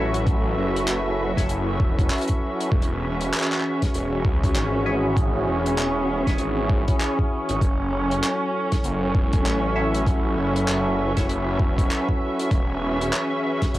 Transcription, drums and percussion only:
0.14 closed hi-hat
0.27 kick, closed hi-hat
0.76 closed hi-hat
0.88 clap, closed hi-hat
1.37 kick, snare, closed hi-hat
1.49 closed hi-hat
1.80 kick
1.99 kick, closed hi-hat
2.10 clap, closed hi-hat
2.15 closed hi-hat
2.18 closed hi-hat
2.21 closed hi-hat
2.27 kick, closed hi-hat
2.60 closed hi-hat
2.72 kick
2.82 closed hi-hat
3.21 closed hi-hat
3.33 clap, closed hi-hat
3.40 clap
3.44 clap
3.52 clap
3.54 clap
3.60 clap
3.82 kick, snare, closed hi-hat
3.94 closed hi-hat
4.25 kick
4.44 kick, closed hi-hat
4.56 clap, closed hi-hat
5.17 kick, closed hi-hat
5.66 closed hi-hat
5.78 clap, closed hi-hat
6.27 kick, snare, closed hi-hat
6.38 closed hi-hat
6.70 kick
6.88 kick, closed hi-hat
7.01 clap, closed hi-hat
7.19 kick
7.49 closed hi-hat
7.62 kick, closed hi-hat
8.11 closed hi-hat
8.23 clap, closed hi-hat
8.72 kick, snare, closed hi-hat
8.84 closed hi-hat
9.15 kick
9.33 kick, closed hi-hat
9.46 clap, closed hi-hat
9.94 closed hi-hat
10.06 kick, closed hi-hat
10.56 closed hi-hat
10.68 clap, closed hi-hat
11.17 kick, snare, closed hi-hat
11.29 closed hi-hat
11.59 kick
11.78 kick, closed hi-hat
11.90 clap, closed hi-hat
12.09 kick
12.40 closed hi-hat
12.51 kick, closed hi-hat
13.01 closed hi-hat
13.13 clap, closed hi-hat
13.62 kick, snare, closed hi-hat
13.74 closed hi-hat

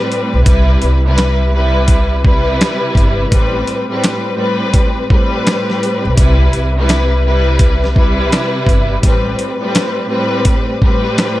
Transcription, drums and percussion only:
0.12 closed hi-hat
0.46 kick, closed hi-hat
0.82 closed hi-hat
1.18 snare, closed hi-hat
1.88 kick, closed hi-hat
2.25 kick
2.61 snare, closed hi-hat
2.95 kick, closed hi-hat
3.32 kick, closed hi-hat
3.67 closed hi-hat
4.04 snare, closed hi-hat
4.74 kick, closed hi-hat
5.10 kick
5.47 snare, closed hi-hat
5.70 snare
5.83 closed hi-hat
6.17 kick, closed hi-hat
6.53 closed hi-hat
6.89 snare, closed hi-hat
7.59 kick, closed hi-hat
7.84 snare
7.96 kick
8.32 snare, closed hi-hat
8.67 kick, closed hi-hat
9.03 kick, closed hi-hat
9.39 closed hi-hat
9.75 snare, closed hi-hat
10.45 kick, closed hi-hat
10.82 kick
11.18 snare, closed hi-hat

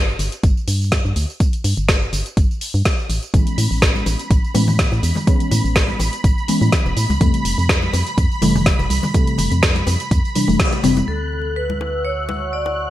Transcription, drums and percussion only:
0.09 tambourine
0.19 open hi-hat, tambourine
0.32 closed hi-hat, tambourine
0.43 kick, closed hi-hat, tambourine
0.57 tambourine
0.68 open hi-hat, tambourine
0.81 tambourine
0.92 kick, snare, closed hi-hat, tambourine
1.06 tambourine
1.16 open hi-hat, tambourine
1.30 tambourine
1.40 kick, closed hi-hat, tambourine
1.53 closed hi-hat, tambourine
1.64 open hi-hat, tambourine
1.77 closed hi-hat, tambourine
1.89 kick, snare, closed hi-hat, tambourine
2.02 tambourine
2.13 open hi-hat, tambourine
2.26 closed hi-hat, tambourine
2.37 kick, closed hi-hat, tambourine
2.51 tambourine
2.61 open hi-hat, tambourine
2.75 tambourine
2.85 kick, snare, closed hi-hat, tambourine
2.99 tambourine
3.10 open hi-hat, tambourine
3.23 closed hi-hat, tambourine
3.34 kick, closed hi-hat, tambourine
3.47 closed hi-hat, tambourine
3.58 open hi-hat, tambourine
3.72 tambourine
3.82 kick, snare, closed hi-hat, tambourine
3.96 tambourine, high conga
4.06 open hi-hat, tambourine, high bongo
4.19 closed hi-hat, tambourine
4.31 kick, closed hi-hat, tambourine
4.44 tambourine
4.54 open hi-hat, tambourine, high bongo, high conga
4.68 tambourine, low conga
4.79 kick, snare, closed hi-hat, tambourine
4.92 tambourine, high bongo
5.03 open hi-hat, tambourine
5.15 tambourine, high conga, low conga
5.27 kick, closed hi-hat, tambourine
5.40 closed hi-hat, tambourine
5.51 open hi-hat, tambourine, low conga
5.65 tambourine
5.76 kick, snare, closed hi-hat, tambourine
5.88 tambourine, high conga
5.99 open hi-hat, tambourine, high bongo
6.13 closed hi-hat, tambourine
6.24 kick, closed hi-hat, tambourine
6.38 tambourine
6.48 open hi-hat, tambourine, high conga
6.62 tambourine
6.72 kick, snare, closed hi-hat, tambourine
6.86 tambourine, high bongo
6.97 open hi-hat, tambourine
7.10 tambourine, high conga
7.21 kick, closed hi-hat, tambourine
7.34 closed hi-hat, tambourine
7.45 open hi-hat, tambourine
7.59 tambourine
7.69 kick, snare, closed hi-hat, tambourine
7.82 tambourine, high conga
7.93 open hi-hat, tambourine, high bongo
8.07 closed hi-hat, tambourine
8.18 kick, closed hi-hat, tambourine
8.31 tambourine
8.42 open hi-hat, tambourine, high bongo, high conga
8.56 tambourine, low conga
8.66 kick, snare, closed hi-hat, tambourine
8.79 tambourine, high bongo
8.90 open hi-hat, tambourine
9.03 tambourine, high conga, low conga
9.14 kick, closed hi-hat, tambourine
9.27 closed hi-hat, tambourine
9.38 open hi-hat, tambourine, low conga
9.52 closed hi-hat, tambourine
9.63 kick, snare, closed hi-hat, tambourine
9.75 closed hi-hat, tambourine, high conga
9.87 open hi-hat, tambourine, high bongo
10.00 closed hi-hat, tambourine
10.11 kick, closed hi-hat, tambourine
10.25 tambourine
10.35 open hi-hat, tambourine, high conga
10.48 tambourine, high bongo
10.60 kick, snare, closed hi-hat, tambourine
10.73 closed hi-hat, tambourine, high bongo
10.84 open hi-hat, tambourine, high bongo
10.97 closed hi-hat, tambourine, high conga
11.70 high conga
11.81 high bongo
12.29 high bongo, high conga
12.66 high bongo

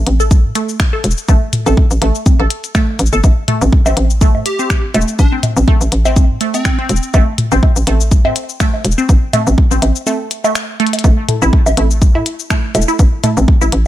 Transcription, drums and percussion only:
0.07 closed hi-hat, high conga
0.20 cabasa
0.31 kick, cabasa
0.55 closed hi-hat, cabasa
0.69 cabasa
0.80 finger snap, kick, cabasa
1.04 closed hi-hat, cabasa
1.11 cabasa
1.18 cabasa
1.29 kick, cabasa
1.53 closed hi-hat, mid tom, cabasa
1.66 high conga, cabasa
1.77 kick
1.91 cabasa
2.02 closed hi-hat
2.15 cabasa
2.26 kick, high conga, cabasa
2.50 closed hi-hat, cabasa
2.64 closed hi-hat, cabasa
2.75 finger snap, kick, cabasa
2.99 closed hi-hat, cabasa
3.06 cabasa
3.13 cabasa
3.24 kick, high bongo, cabasa
3.48 closed hi-hat, mid tom
3.61 high conga, cabasa
3.73 kick
3.86 high bongo, cabasa
3.97 closed hi-hat, high conga
4.10 cabasa
4.21 kick, cabasa
4.35 high bongo
4.46 closed hi-hat, cabasa
4.59 cabasa
4.70 finger snap, kick, cabasa
4.94 closed hi-hat, high bongo, cabasa
5.01 cabasa
5.08 cabasa
5.19 kick, cabasa
5.43 closed hi-hat, mid tom, high bongo, cabasa
5.57 high conga, cabasa
5.68 kick
5.81 cabasa
5.92 closed hi-hat
6.05 high bongo, cabasa
6.16 kick, high conga, cabasa
6.41 closed hi-hat, cabasa
6.54 closed hi-hat, high bongo, cabasa
6.65 finger snap, kick, cabasa
6.89 closed hi-hat, cabasa
6.96 cabasa
7.03 cabasa
7.14 kick, high bongo, cabasa
7.38 closed hi-hat, mid tom
7.52 high conga, cabasa
7.63 kick, high bongo
7.76 cabasa
7.87 closed hi-hat, high conga
8.00 cabasa
8.11 kick, cabasa
8.25 high bongo
8.36 closed hi-hat, cabasa
8.49 cabasa
8.60 finger snap, kick, cabasa
8.74 high bongo
8.85 closed hi-hat, cabasa
8.91 cabasa
8.98 cabasa
9.09 kick, cabasa
9.33 closed hi-hat, mid tom, high bongo, cabasa
9.47 high conga, cabasa
9.58 kick
9.71 cabasa
9.82 closed hi-hat, high bongo, high conga, cabasa
9.96 cabasa
10.07 high conga, cabasa
10.31 closed hi-hat, cabasa
10.44 high bongo, cabasa
10.55 finger snap, cabasa
10.80 closed hi-hat
10.87 closed hi-hat
10.93 closed hi-hat, high bongo
10.99 closed hi-hat
11.04 kick, high bongo, cabasa
11.29 closed hi-hat, mid tom
11.42 high conga, cabasa
11.53 kick
11.66 high bongo, cabasa
11.77 closed hi-hat, high conga
11.91 cabasa
12.02 kick, cabasa
12.15 high bongo
12.26 closed hi-hat, cabasa
12.39 cabasa
12.50 finger snap, kick, cabasa
12.75 closed hi-hat, high bongo, cabasa
12.82 cabasa
12.88 cabasa
12.99 kick, cabasa
13.24 closed hi-hat, mid tom, high bongo, cabasa
13.37 high conga, cabasa
13.48 kick
13.61 cabasa
13.72 closed hi-hat

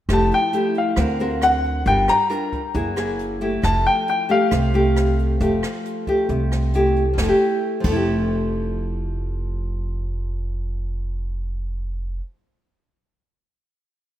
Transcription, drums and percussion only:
0.09 kick, cross-stick, closed hi-hat
0.31 closed hi-hat
0.53 closed hi-hat
0.74 closed hi-hat
0.96 kick, cross-stick, closed hi-hat
1.19 closed hi-hat
1.41 cross-stick, closed hi-hat
1.64 closed hi-hat
1.86 kick, closed hi-hat
2.08 cross-stick, closed hi-hat
2.31 closed hi-hat
2.52 kick, closed hi-hat
2.74 kick, closed hi-hat
2.97 cross-stick, closed hi-hat
3.19 closed hi-hat
3.41 closed hi-hat
3.63 kick, cross-stick, closed hi-hat
3.86 closed hi-hat
4.08 closed hi-hat
4.30 closed hi-hat
4.51 kick, cross-stick, closed hi-hat
4.74 closed hi-hat
4.96 cross-stick, closed hi-hat
5.19 closed hi-hat
5.41 kick, closed hi-hat
5.63 cross-stick, closed hi-hat
5.85 closed hi-hat
6.07 kick, closed hi-hat
6.29 kick, closed hi-hat
6.52 cross-stick, closed hi-hat
6.73 closed hi-hat
6.96 closed hi-hat
7.18 kick, snare
7.84 kick, crash

